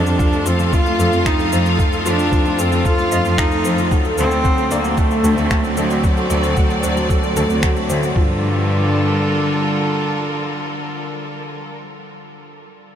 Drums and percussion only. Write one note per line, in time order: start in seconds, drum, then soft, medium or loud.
0.06 shaker soft
0.20 kick loud
0.20 shaker soft
0.33 shaker soft
0.46 shaker medium
0.59 shaker soft
0.73 kick loud
0.73 shaker soft
0.86 shaker soft
1.00 shaker medium
1.13 shaker soft
1.26 finger snap medium
1.26 kick loud
1.26 shaker soft
1.39 shaker soft
1.53 shaker medium
1.66 shaker soft
1.79 kick medium
1.79 shaker soft
1.93 shaker soft
2.06 shaker medium
2.19 shaker soft
2.32 kick loud
2.32 shaker soft
2.46 shaker soft
2.59 shaker medium
2.72 shaker soft
2.85 kick medium
2.85 shaker soft
2.99 shaker soft
3.12 shaker medium
3.25 shaker soft
3.38 finger snap medium
3.38 kick loud
3.38 shaker soft
3.51 shaker soft
3.65 shaker medium
3.78 shaker soft
3.91 kick medium
3.91 shaker soft
4.05 shaker soft
4.18 shaker medium
4.31 shaker soft
4.45 kick loud
4.45 shaker soft
4.58 shaker soft
4.71 shaker medium
4.84 shaker soft
4.97 kick medium
4.97 shaker soft
5.11 shaker soft
5.24 shaker medium
5.38 shaker soft
5.51 finger snap medium
5.51 kick loud
5.51 shaker soft
5.64 shaker soft
5.77 shaker medium
5.90 shaker soft
6.04 kick loud
6.04 shaker soft
6.17 shaker soft
6.30 shaker medium
6.43 shaker soft
6.57 kick loud
6.57 shaker soft
6.70 shaker soft
6.83 shaker medium
6.97 shaker soft
7.10 kick medium
7.10 shaker soft
7.23 shaker soft
7.36 shaker medium
7.50 shaker soft
7.63 finger snap medium
7.63 kick loud
7.63 shaker soft
7.76 shaker soft
7.90 shaker medium
8.03 shaker soft
8.16 kick loud